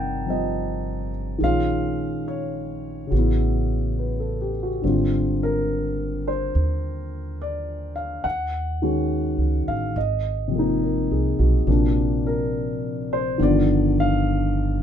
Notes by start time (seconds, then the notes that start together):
Already playing: G1 C3 F3 A#3 D#4 F#5 G5 A5 A#5
0.26 F3 G3 C4
0.30 D#5
1.38 A#1 D#3 G#3 C#4
1.43 F4 F5
2.28 C#5
3.07 C#3 F#4
3.12 A1 B3
3.18 E4
3.99 B4
4.20 A4
4.41 G4
4.63 F#4
4.82 G#1 D3 G3 C4
4.87 F4
5.43 A#4
6.28 C5
6.55 D#2
7.42 D5
7.96 F5
8.24 D#2 F#5
8.82 D#3 G#3 C#4 F#4
9.38 C#2
9.68 A1 F5
9.96 G#1 D#5
10.48 C3 F3
10.55 A#3 D#4
10.83 A#4
11.11 C2 G#4
11.39 B1 F#4
11.67 A#1 C3 F3 A#3 D4
12.27 A#4
13.13 C5
13.38 G1 D3 D#3 F3 B3
13.43 D5
14.00 F5